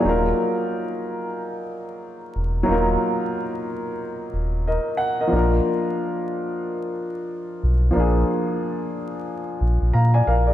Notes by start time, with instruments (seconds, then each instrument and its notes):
Already playing: grand piano G#4 D5
0.00 grand piano F#3 A#3
0.05 sub bass D#1, grand piano D#4 F4
0.09 grand piano A#4
2.36 sub bass E1
2.63 grand piano F#3 A#3
2.68 sub bass D#1, grand piano D#4 F4
2.72 grand piano A#4
4.34 sub bass D#1
4.68 grand piano A#4 D#5
4.97 grand piano F#5
5.21 grand piano A#4 D#5
5.28 grand piano F3 A#3
5.32 sub bass A#1, grand piano D4 F4
5.36 grand piano A#4
7.63 sub bass B1
7.91 grand piano F3 A#3
7.95 sub bass A#1, grand piano D4 F4
8.00 grand piano G#4
9.61 sub bass A#1
9.82 sub bass A#1
9.93 sub bass A#2, grand piano F5 A#5
10.14 grand piano D5 G#5
10.27 sub bass A#1, grand piano A#4 F5
10.47 grand piano G#4 D5